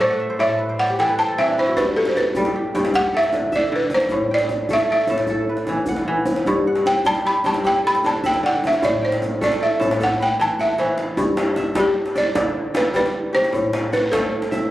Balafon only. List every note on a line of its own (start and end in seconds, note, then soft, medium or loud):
0.01 0.41 C5 medium
0.40 0.58 E5 medium
0.79 0.99 F#5 medium
1.00 1.19 G5 medium
1.19 1.38 A5 medium
1.39 1.56 E5 medium
1.59 1.78 C5 medium
1.77 1.97 B4 medium
1.96 2.08 A4 medium
2.09 2.16 C5 medium
2.17 2.53 B4 medium
2.95 3.13 F#5 loud
3.17 3.56 E5 loud
3.56 3.74 D5 medium
3.76 3.92 B4 medium
3.94 4.30 C5 medium
4.34 4.73 D5 medium
4.73 4.91 E5 medium
4.92 5.85 E5 medium
6.87 7.05 G5 medium
7.07 7.24 A5 loud
7.27 7.46 B5 medium
7.46 7.64 A5 medium
7.67 7.84 G5 medium
7.87 8.06 B5 loud
8.06 8.23 A5 medium
8.26 8.45 G5 medium
8.46 8.65 F#5 medium
8.67 8.85 E5 medium
8.85 9.02 D5 medium
9.05 9.22 C5 medium
9.44 9.63 D5 medium
9.63 10.02 E5 medium
10.03 10.22 F#5 medium
10.23 10.39 G5 medium
10.41 10.60 A5 medium
10.61 10.80 E5 medium
10.80 10.97 C5 medium
11.79 12.15 G4 medium
12.18 12.77 D5 medium
12.77 12.95 B4 medium
12.96 13.36 B4 medium
13.35 13.89 C5 medium
13.93 14.04 B4 medium
14.06 14.12 B4 medium
14.12 14.53 A4 medium